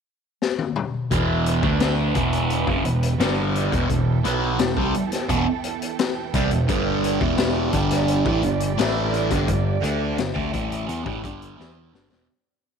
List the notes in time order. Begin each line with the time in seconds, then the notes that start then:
0.42 snare
0.59 high tom
0.76 mid tom
1.11 E1 E2 B2 E3 B3 B4 G5, kick, closed hi-hat
1.46 closed hi-hat
1.62 D2 D3 A3 D4, kick
1.80 snare, closed hi-hat
2.14 E1 E2 B2 E3, kick, closed hi-hat
2.33 closed hi-hat
2.50 closed hi-hat
2.67 F#1 F#2 C#3, kick
2.84 E1 E2 B2, closed hi-hat
3.03 closed hi-hat
3.18 G1 G2 D3 G3, snare, closed hi-hat
3.55 closed hi-hat
3.72 E1 E2 B2, kick, closed hi-hat
3.89 E1 E2 B2 A4, kick, closed hi-hat
4.24 B1 B2 F#3 B3, closed hi-hat
4.59 E1 E2 B2, snare, closed hi-hat
4.76 C2 C3 G3, kick
4.94 muted distorted electric guitar stroke, closed hi-hat
5.12 snare, closed hi-hat
5.29 E1 E2 B2, kick, closed hi-hat
5.64 closed hi-hat
5.82 closed hi-hat
5.99 snare, closed hi-hat
6.34 C2 C3 G3, kick, closed hi-hat
6.51 E1 E2 B2, closed hi-hat
6.68 G1 G2 D3 G3 D5, kick, closed hi-hat
7.04 closed hi-hat
7.20 E1 E2 B2 E3, kick
7.38 snare, closed hi-hat
7.73 G1 G2 D3 G3, kick, closed hi-hat
7.91 snare, closed hi-hat
8.08 closed hi-hat
8.25 A1 A2 E3, kick
8.43 G1 G2 D3, closed hi-hat
8.60 closed hi-hat
8.77 A1 A2 E3 A3, snare, closed hi-hat
9.14 closed hi-hat
9.31 G1 G2 D3, kick, closed hi-hat
9.48 G1 G2 D3, kick, closed hi-hat
9.82 D2 D3 A3 D4, closed hi-hat
10.18 G1 G2 D3, snare, closed hi-hat
10.34 D2 D3 A3, kick
10.52 A1 A2 E3 A3, kick, closed hi-hat
10.72 closed hi-hat
10.87 E2 E3 B3, closed hi-hat
11.04 A1 A2 E3, kick
11.22 G1 G2 D3 G3, kick, closed hi-hat
11.42 closed hi-hat
11.57 E2 E3 B3 E4, snare
11.93 G1 G2 D3, snare
12.10 E1 E2 B2, snare